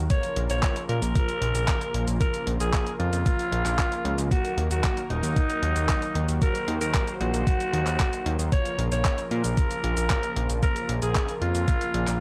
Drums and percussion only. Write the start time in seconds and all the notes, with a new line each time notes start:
0.10 kick, closed hi-hat, cabasa
0.23 closed hi-hat, cabasa
0.36 closed hi-hat
0.50 closed hi-hat, cabasa
0.63 kick, clap, closed hi-hat, cabasa
0.76 closed hi-hat, cabasa
0.89 closed hi-hat
1.02 closed hi-hat, cabasa
1.15 kick, closed hi-hat, cabasa
1.29 closed hi-hat, cabasa
1.42 closed hi-hat
1.55 closed hi-hat, cabasa
1.68 kick, clap, closed hi-hat, cabasa
1.81 closed hi-hat, cabasa
1.94 closed hi-hat
2.08 closed hi-hat, cabasa
2.21 kick, closed hi-hat, cabasa
2.34 closed hi-hat, cabasa
2.47 closed hi-hat
2.60 closed hi-hat, cabasa
2.73 kick, clap, closed hi-hat, cabasa
2.87 closed hi-hat, cabasa
3.00 closed hi-hat
3.13 closed hi-hat, cabasa
3.26 kick, closed hi-hat, cabasa
3.39 closed hi-hat, cabasa
3.52 closed hi-hat
3.66 clap, closed hi-hat, cabasa
3.79 kick, clap, closed hi-hat, cabasa
3.92 closed hi-hat, cabasa
4.05 closed hi-hat
4.18 closed hi-hat, cabasa
4.31 kick, closed hi-hat, cabasa
4.45 closed hi-hat, cabasa
4.58 closed hi-hat
4.71 closed hi-hat, cabasa
4.84 kick, clap, closed hi-hat, cabasa
4.97 closed hi-hat, cabasa
5.10 closed hi-hat
5.23 closed hi-hat, cabasa
5.36 kick, closed hi-hat, cabasa
5.50 closed hi-hat, cabasa
5.63 closed hi-hat
5.76 closed hi-hat, cabasa
5.89 kick, clap, closed hi-hat, cabasa
6.02 closed hi-hat, cabasa
6.15 closed hi-hat
6.29 closed hi-hat, cabasa
6.42 kick, closed hi-hat, cabasa
6.55 closed hi-hat, cabasa
6.68 closed hi-hat
6.81 closed hi-hat, cabasa
6.94 kick, clap, closed hi-hat, cabasa
7.07 closed hi-hat, cabasa
7.21 closed hi-hat
7.34 closed hi-hat, cabasa
7.47 kick, closed hi-hat, cabasa
7.60 closed hi-hat, cabasa
7.74 closed hi-hat
7.87 clap, closed hi-hat, cabasa
8.00 kick, clap, closed hi-hat, cabasa
8.13 closed hi-hat, cabasa
8.26 closed hi-hat
8.39 closed hi-hat, cabasa
8.52 kick, closed hi-hat, cabasa
8.65 closed hi-hat, cabasa
8.79 closed hi-hat
8.92 closed hi-hat, cabasa
9.05 kick, clap, closed hi-hat, cabasa
9.18 closed hi-hat, cabasa
9.31 closed hi-hat
9.44 closed hi-hat, cabasa
9.57 kick, closed hi-hat, cabasa
9.71 closed hi-hat, cabasa
9.84 closed hi-hat
9.97 closed hi-hat, cabasa
10.10 kick, clap, closed hi-hat, cabasa
10.23 closed hi-hat, cabasa
10.36 closed hi-hat
10.50 closed hi-hat, cabasa
10.63 kick, closed hi-hat, cabasa
10.76 closed hi-hat, cabasa
10.89 closed hi-hat
11.02 closed hi-hat, cabasa
11.15 kick, clap, closed hi-hat, cabasa
11.29 closed hi-hat, cabasa
11.42 closed hi-hat
11.55 closed hi-hat, cabasa
11.68 kick, closed hi-hat, cabasa
11.81 closed hi-hat, cabasa
11.94 closed hi-hat
12.07 clap, closed hi-hat, cabasa